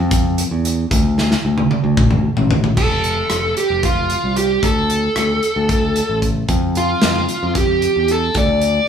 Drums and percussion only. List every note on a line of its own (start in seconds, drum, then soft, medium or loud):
0.11 kick medium
0.11 closed hi-hat medium
0.38 closed hi-hat medium
0.65 closed hi-hat medium
0.91 kick loud
0.91 closed hi-hat medium
1.18 snare soft
1.31 snare soft
1.58 high tom medium
1.71 high tom medium
1.97 kick medium
1.97 mid tom medium
2.11 mid tom medium
2.37 floor tom medium
2.51 floor tom medium
2.64 floor tom medium
2.77 kick medium
2.77 crash medium
3.04 closed hi-hat soft
3.30 cross-stick medium
3.30 closed hi-hat medium
3.57 closed hi-hat soft
3.83 kick medium
3.83 closed hi-hat medium
4.10 closed hi-hat medium
4.36 closed hi-hat medium
4.63 kick medium
4.63 closed hi-hat medium
4.90 closed hi-hat soft
5.16 cross-stick medium
5.16 closed hi-hat medium
5.43 closed hi-hat medium
5.69 kick medium
5.69 closed hi-hat medium
5.96 closed hi-hat medium
6.22 kick medium
6.22 closed hi-hat medium
6.48 kick medium
6.48 closed hi-hat medium
6.75 closed hi-hat soft
7.02 snare medium
7.02 closed hi-hat medium
7.29 closed hi-hat soft
7.55 kick medium
7.55 snare soft
7.55 closed hi-hat medium
7.82 closed hi-hat soft
8.08 closed hi-hat soft
8.35 kick medium
8.35 closed hi-hat medium
8.61 closed hi-hat soft